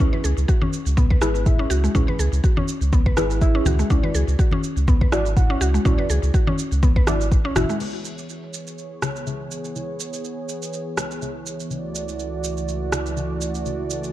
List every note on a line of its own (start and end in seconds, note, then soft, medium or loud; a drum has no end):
0.00 0.12 C#4 loud
0.00 1.19 E4 medium
0.00 1.19 G#4 medium
0.00 1.19 B4 medium
0.00 kick loud
0.00 shaker soft
0.13 0.24 B4 medium
0.13 high conga medium
0.24 0.34 C#2 loud
0.24 0.36 G#4 medium
0.24 shaker medium
0.37 0.46 C#2 medium
0.37 shaker medium
0.48 0.61 F#4 medium
0.48 kick loud
0.48 shaker soft
0.62 0.72 C#4 loud
0.62 high conga loud
0.73 shaker medium
0.86 1.17 C#2 medium
0.86 shaker medium
0.97 1.09 B3 loud
0.97 kick loud
0.97 low conga medium
0.97 shaker soft
1.10 1.21 B4 medium
1.10 kick medium
1.10 high conga medium
1.21 1.66 G#1 medium
1.21 1.34 E4 medium
1.21 1.44 E4 medium
1.21 1.44 G#4 medium
1.21 1.44 B4 loud
1.21 cross-stick medium
1.21 shaker medium
1.35 shaker soft
1.46 1.92 E4 loud
1.46 1.92 G#4 medium
1.46 1.92 E5 loud
1.46 kick loud
1.46 low conga medium
1.46 shaker soft
1.59 1.70 C#4 loud
1.70 1.89 C#2 medium
1.70 1.82 F#4 loud
1.70 shaker medium
1.84 1.94 G#3 medium
1.84 shaker soft
1.95 2.05 C#2 loud
1.95 2.08 C#4 loud
1.95 3.14 E4 medium
1.95 3.14 G#4 medium
1.95 3.14 B4 medium
1.95 kick loud
1.95 low conga medium
1.95 shaker soft
2.08 2.19 B4 medium
2.08 high conga medium
2.19 2.29 C#2 loud
2.19 2.31 G#4 medium
2.19 shaker medium
2.32 2.41 C#2 medium
2.32 shaker soft
2.44 2.56 F#4 medium
2.44 kick loud
2.44 shaker soft
2.57 2.68 C#4 loud
2.57 high conga loud
2.68 shaker medium
2.81 3.12 C#2 medium
2.81 shaker medium
2.93 3.05 B3 loud
2.93 kick loud
2.93 high conga medium
2.93 shaker soft
3.06 3.17 B4 medium
3.06 kick medium
3.17 3.61 G#1 medium
3.17 3.39 E4 medium
3.17 3.30 E4 medium
3.17 3.39 G#4 medium
3.17 3.39 B4 loud
3.17 cross-stick medium
3.17 high conga medium
3.17 shaker medium
3.31 shaker soft
3.41 3.87 E4 medium
3.41 3.87 G#4 medium
3.41 3.87 E5 loud
3.41 kick loud
3.41 shaker soft
3.55 3.65 C#4 loud
3.65 3.84 C#2 loud
3.65 3.78 F#4 loud
3.65 high conga loud
3.65 low conga medium
3.65 shaker medium
3.79 3.89 G#3 medium
3.79 shaker soft
3.90 4.00 C#2 loud
3.90 4.03 C#4 loud
3.90 5.09 E4 medium
3.90 5.09 F#4 medium
3.90 5.09 D5 medium
3.90 kick loud
3.90 shaker soft
4.04 4.14 B4 medium
4.04 high conga medium
4.14 4.24 C#2 loud
4.14 4.27 G#4 medium
4.14 shaker medium
4.28 4.36 C#2 medium
4.28 shaker soft
4.39 4.51 F#4 medium
4.39 kick loud
4.39 shaker soft
4.51 4.63 C#4 loud
4.51 high conga loud
4.64 shaker medium
4.76 5.07 C#2 medium
4.76 shaker soft
4.87 5.00 B3 loud
4.87 kick loud
4.87 low conga loud
4.87 shaker soft
5.01 5.12 B4 medium
5.01 kick medium
5.01 high conga medium
5.12 5.56 G#1 medium
5.12 5.34 E4 medium
5.12 5.25 E4 medium
5.12 5.34 F#4 medium
5.12 5.34 D5 loud
5.12 cross-stick medium
5.12 shaker medium
5.26 shaker soft
5.36 5.83 E4 medium
5.36 5.83 F#4 medium
5.36 5.83 F#5 loud
5.36 kick loud
5.36 low conga medium
5.36 shaker soft
5.50 5.60 C#4 loud
5.61 5.79 C#2 medium
5.61 5.73 F#4 loud
5.61 shaker medium
5.74 5.84 G#3 medium
5.74 shaker soft
5.85 5.95 C#2 loud
5.85 5.98 C#4 loud
5.85 7.04 E4 medium
5.85 7.04 F#4 medium
5.85 7.05 D5 medium
5.85 kick loud
5.85 low conga medium
5.85 shaker soft
5.99 6.09 B4 medium
5.99 high conga medium
6.09 6.19 C#2 loud
6.09 6.22 G#4 medium
6.09 shaker medium
6.23 6.31 C#2 medium
6.23 shaker soft
6.34 6.46 F#4 medium
6.34 kick loud
6.34 shaker soft
6.47 6.58 C#4 loud
6.47 high conga medium
6.59 shaker medium
6.72 7.02 C#2 medium
6.72 shaker medium
6.83 6.95 B3 loud
6.83 kick loud
6.83 high conga medium
6.83 shaker soft
6.96 7.07 B4 medium
6.96 kick medium
7.07 7.51 G#1 medium
7.07 7.20 E4 medium
7.07 7.18 E4 medium
7.07 7.18 F#4 medium
7.07 7.18 D5 loud
7.07 cross-stick medium
7.07 high conga medium
7.07 shaker medium
7.21 shaker soft
7.32 kick loud
7.32 shaker soft
7.45 7.55 C#4 loud
7.56 7.66 G#1 medium
7.56 7.78 E4 medium
7.56 7.78 F#4 medium
7.56 7.68 F#4 medium
7.56 7.78 E5 loud
7.56 cross-stick medium
7.56 high conga medium
7.56 low conga medium
7.56 shaker medium
7.70 7.79 G#3 medium
7.70 shaker medium
7.80 9.00 C#3 medium
7.80 14.12 E3 medium
7.80 11.67 B3 medium
7.80 9.00 E4 medium
7.80 11.67 G#4 medium
7.80 9.00 B4 medium
7.80 11.67 C#5 medium
7.80 crash medium
7.80 shaker soft
8.05 shaker medium
8.18 shaker soft
8.29 shaker soft
8.54 shaker medium
8.67 shaker soft
8.78 shaker soft
9.02 9.24 C#3 medium
9.02 9.24 E4 medium
9.02 9.24 G#4 medium
9.02 9.24 B4 medium
9.02 cross-stick medium
9.02 shaker medium
9.16 shaker soft
9.26 9.73 C#3 medium
9.26 9.73 E4 medium
9.26 9.73 G#4 medium
9.26 9.73 E5 loud
9.26 shaker soft
9.51 shaker medium
9.65 shaker soft
9.75 10.95 C#3 medium
9.75 10.95 E4 medium
9.75 10.95 G#4 medium
9.75 10.95 B4 medium
9.75 shaker soft
10.00 shaker medium
10.13 shaker soft
10.25 shaker soft
10.49 shaker medium
10.62 shaker medium
10.73 shaker soft
10.97 11.19 C#3 medium
10.97 11.19 E4 medium
10.97 11.19 G#4 medium
10.97 11.19 B4 medium
10.97 cross-stick medium
10.97 shaker medium
11.11 shaker soft
11.22 11.68 C#3 medium
11.22 11.68 E4 medium
11.22 11.68 G#4 medium
11.22 11.68 E5 loud
11.22 shaker soft
11.46 shaker medium
11.60 shaker soft
11.70 14.12 C#2 medium
11.70 12.90 C#3 medium
11.70 14.12 A3 medium
11.70 12.90 E4 medium
11.70 12.90 F#4 medium
11.70 14.12 F#4 medium
11.70 14.12 D5 medium
11.70 12.90 D5 medium
11.70 shaker soft
11.95 shaker medium
12.09 shaker soft
12.20 shaker soft
12.44 shaker medium
12.57 shaker medium
12.69 shaker soft
12.92 13.14 C#3 medium
12.92 13.14 E4 medium
12.92 13.14 F#4 medium
12.92 cross-stick medium
12.92 shaker medium
13.06 shaker soft
13.17 13.63 C#3 medium
13.17 13.63 E4 medium
13.17 13.63 F#4 medium
13.17 13.63 F#5 loud
13.17 shaker soft
13.41 shaker medium
13.55 shaker soft
13.65 14.12 C#3 medium
13.65 14.12 E4 medium
13.65 14.12 F#4 medium
13.65 14.12 D5 medium
13.65 shaker soft
13.90 shaker medium
14.04 shaker soft